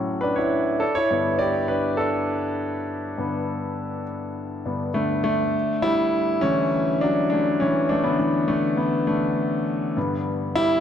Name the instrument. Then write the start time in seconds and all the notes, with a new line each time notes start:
grand piano
Already playing: A2 F#3 C#4 A4 F#5
0.21 D4 B4
0.36 E4 C#5
0.80 D4 A4
0.95 E4 C#5
1.11 G2 D3 B3
1.39 G4 D5
1.68 D4 B4
1.97 D4 A4
3.18 G2 D3 B3
4.66 G2 D3 B3
4.94 D3 A3
5.24 D3 A3
5.82 G3 E4
6.41 D3 E3 A3 C#4
7.01 F#3 D4
7.30 A3 D4
7.60 E3 C#4
7.89 A3 D4
8.04 D3 B3
8.19 D3 E3 A3
8.48 D3 A3
8.77 D3 B3
9.07 D3 A3
9.97 G2 D3 B3
10.55 G3 E4